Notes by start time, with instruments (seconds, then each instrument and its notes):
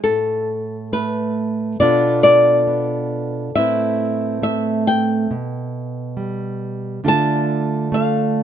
0.04 steel-string acoustic guitar A2, nylon-string guitar A4
0.93 steel-string acoustic guitar A3, nylon-string guitar B4
1.80 steel-string acoustic guitar B2 B3 D4 F4 A4, nylon-string guitar D5
2.23 nylon-string guitar D5
2.67 steel-string acoustic guitar B3
3.55 steel-string acoustic guitar A2 A3 C4 E4 B4, nylon-string guitar E5
4.42 steel-string acoustic guitar A3, nylon-string guitar E5
4.87 nylon-string guitar G5
5.31 steel-string acoustic guitar B2
6.17 steel-string acoustic guitar G3
7.04 steel-string acoustic guitar D3 A3 D4 F4 A4
7.08 nylon-string guitar A5
7.92 steel-string acoustic guitar A3, nylon-string guitar F5